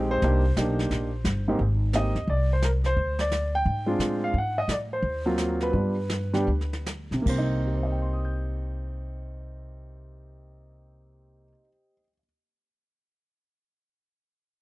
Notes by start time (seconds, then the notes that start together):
Already playing: A#1 G#3 C4 D#4 G4
0.11 C5
0.22 C2 A#3 D4 D#4 G4, brush sweep, kick, snare
0.56 B1 A#3 D4 D#4 G4, kick, snare, hi-hat pedal
0.79 snare
0.91 A#1, brush sweep, kick, snare
1.24 G1, kick, snare, hi-hat pedal
1.48 G#2 A#3 C4 D#4 G4
1.59 G#1, brush sweep, kick
1.93 A#3 C4 D#4 G4 D#5, snare, hi-hat pedal
2.15 D#2, snare
2.27 C2 D5, brush sweep, kick
2.53 C5
2.62 A#4, snare, hi-hat pedal
2.84 C5, snare
2.97 D2, brush sweep, kick
3.19 D5, snare
3.31 snare, hi-hat pedal
3.55 G5
3.65 G#2, brush sweep, kick
3.86 G#3 C4 D4 F4
3.99 A2, snare, hi-hat pedal
4.24 F5
4.34 G#2, brush sweep, kick
4.38 F#5
4.58 D#5
4.68 A2 D5, snare, hi-hat pedal
4.93 C5
5.02 D#2, brush sweep, kick
5.26 F#3 A#3 C4 F4
5.38 snare, hi-hat pedal
5.60 B4, snare
5.73 G2 G3 B3 D4 F4, brush sweep, kick
6.09 snare, hi-hat pedal
6.33 G3 B3 D4 G4, snare
6.47 D2, brush sweep, kick
6.61 snare
6.73 snare
6.86 snare, hi-hat pedal
7.11 B1 C3, snare
7.22 A#3
7.26 C2 C5, kick, crash
7.31 C4
7.38 D#4
7.67 G4
7.74 C5
7.83 D#5
7.92 G5
8.02 C6
8.13 D#6
8.25 G6